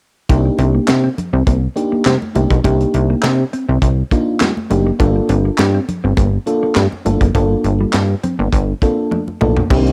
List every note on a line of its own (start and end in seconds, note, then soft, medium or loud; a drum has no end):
0.29 0.50 C2 loud
0.29 1.05 A#3 medium
0.29 1.05 D4 medium
0.29 1.05 D#4 medium
0.29 1.05 G4 medium
0.29 kick loud
0.29 closed hi-hat medium
0.29 muted conga medium
0.45 muted clean electric guitar stroke soft
0.59 0.80 C2 loud
0.59 0.71 C4 medium
0.59 closed hi-hat medium
0.59 muted conga soft
0.75 0.85 A#3 medium
0.88 1.09 C3 medium
0.88 snare loud
0.88 clap medium
0.88 closed hi-hat loud
0.88 high conga medium
1.04 1.14 C4 medium
1.18 muted clean electric guitar stroke soft
1.18 closed hi-hat medium
1.18 low conga medium
1.33 1.43 C2 medium
1.33 1.44 C4 medium
1.47 1.68 C2 medium
1.47 1.59 A#3 medium
1.47 kick loud
1.47 closed hi-hat loud
1.47 muted conga soft
1.76 2.14 A#3 medium
1.76 2.14 D4 medium
1.76 2.14 D#4 medium
1.76 2.14 G4 medium
1.76 muted clean electric guitar stroke soft
1.76 closed hi-hat medium
1.92 2.03 A#3 medium
2.05 2.17 C3 loud
2.05 2.18 G3 medium
2.05 snare loud
2.05 clap medium
2.05 closed hi-hat medium
2.05 high conga medium
2.22 muted clean electric guitar stroke soft
2.22 high conga soft
2.35 2.46 C2 medium
2.35 2.54 A#3 medium
2.35 2.54 D4 medium
2.35 2.55 D#4 medium
2.35 2.55 G4 medium
2.35 closed hi-hat medium
2.35 high conga medium
2.51 2.60 B1 medium
2.51 2.61 A#3 medium
2.51 kick loud
2.51 closed hi-hat medium
2.64 2.85 C2 loud
2.64 3.40 A#3 medium
2.64 2.77 C4 medium
2.64 3.40 D4 medium
2.64 3.40 D#4 medium
2.64 3.40 G4 medium
2.64 kick loud
2.64 closed hi-hat medium
2.64 muted conga soft
2.80 closed hi-hat soft
2.94 3.15 C2 medium
2.94 muted clean electric guitar stroke soft
2.94 closed hi-hat medium
2.94 muted conga soft
3.10 3.20 A#3 medium
3.23 3.44 C3 medium
3.23 snare loud
3.23 clap medium
3.23 closed hi-hat medium
3.23 high conga medium
3.53 3.65 C4 medium
3.53 closed hi-hat medium
3.69 3.78 C2 medium
3.69 3.79 C4 medium
3.82 4.03 C2 medium
3.82 kick loud
3.82 closed hi-hat loud
4.11 4.49 A#3 medium
4.11 4.24 A#3 medium
4.11 4.50 D4 medium
4.11 4.50 D#4 medium
4.11 4.50 F4 medium
4.11 kick medium
4.11 closed hi-hat medium
4.40 4.53 G3 medium
4.40 snare loud
4.40 clap medium
4.40 closed hi-hat medium
4.40 high conga medium
4.57 high conga soft
4.70 4.91 F#1 medium
4.70 4.90 A#3 medium
4.70 4.90 D4 medium
4.70 4.90 D#4 medium
4.70 4.90 G4 medium
4.70 muted clean electric guitar stroke soft
4.70 closed hi-hat medium
4.70 high conga medium
4.87 4.97 A#3 medium
4.99 5.21 G1 loud
4.99 5.75 A#3 medium
4.99 5.75 D4 medium
4.99 5.75 F4 medium
4.99 5.76 A4 medium
4.99 kick loud
4.99 closed hi-hat medium
4.99 muted conga medium
5.16 muted clean electric guitar stroke soft
5.29 5.50 G1 loud
5.29 5.41 C4 medium
5.29 closed hi-hat medium
5.29 muted conga soft
5.45 5.56 A#3 medium
5.58 5.80 G2 medium
5.58 snare loud
5.58 clap medium
5.58 closed hi-hat medium
5.58 high conga medium
5.74 5.85 C4 medium
5.88 muted clean electric guitar stroke soft
5.88 closed hi-hat medium
5.88 low conga medium
6.04 6.14 G1 medium
6.04 6.14 C4 medium
6.17 6.38 G1 medium
6.17 6.29 A#3 medium
6.17 kick loud
6.17 closed hi-hat loud
6.17 muted conga soft
6.46 6.85 A#3 medium
6.46 6.85 D4 medium
6.46 6.85 F4 medium
6.46 6.85 A4 medium
6.46 muted clean electric guitar stroke soft
6.46 closed hi-hat medium
6.63 6.73 A#3 medium
6.75 6.87 G2 loud
6.75 6.88 G3 medium
6.75 snare loud
6.75 clap medium
6.75 closed hi-hat medium
6.75 high conga medium
6.92 muted clean electric guitar stroke soft
6.92 high conga soft
7.05 7.17 G1 medium
7.05 7.25 A#3 medium
7.05 7.25 D4 medium
7.05 7.25 F4 medium
7.05 7.25 A4 medium
7.05 closed hi-hat medium
7.05 high conga medium
7.21 7.31 F#1 medium
7.21 7.32 A#3 medium
7.21 kick loud
7.21 closed hi-hat medium
7.34 7.56 G1 loud
7.34 7.47 G3 medium
7.34 8.10 A#3 medium
7.34 8.11 D4 medium
7.34 8.11 F4 medium
7.34 8.11 A4 medium
7.34 kick loud
7.34 closed hi-hat medium
7.34 muted conga soft
7.64 7.85 G1 loud
7.64 muted clean electric guitar stroke soft
7.64 closed hi-hat medium
7.64 muted conga soft
7.81 7.91 G3 medium
7.93 8.15 G2 medium
7.93 snare loud
7.93 clap medium
7.93 closed hi-hat medium
7.93 high conga medium
8.23 8.35 C4 medium
8.23 closed hi-hat medium
8.23 low conga medium
8.39 8.49 G1 medium
8.39 8.50 A#3 medium
8.53 8.73 G1 loud
8.53 kick loud
8.53 closed hi-hat loud
8.82 9.20 A#3 medium
8.82 8.94 C4 medium
8.82 9.20 D4 medium
8.82 9.20 F4 medium
8.82 9.20 A4 medium
8.82 kick medium
8.82 closed hi-hat medium
9.11 9.24 D4 medium
9.11 high tom medium
9.11 high conga medium
9.28 high conga soft
9.41 9.62 B1 medium
9.41 9.60 A#3 medium
9.41 9.60 D4 medium
9.41 9.61 F4 medium
9.41 9.61 A4 medium
9.41 muted clean electric guitar stroke soft
9.41 mid tom medium
9.41 high conga medium
9.56 9.67 A#3 medium
9.56 floor tom medium
9.70 9.91 C2 loud
9.70 9.92 D#3 medium
9.70 9.92 A#3 medium
9.70 9.92 C4 medium
9.70 9.82 C4 medium
9.70 9.92 D4 medium
9.70 9.92 D#4 medium
9.70 9.92 G4 medium
9.70 kick loud
9.70 crash medium
9.70 muted conga medium
9.86 closed hi-hat medium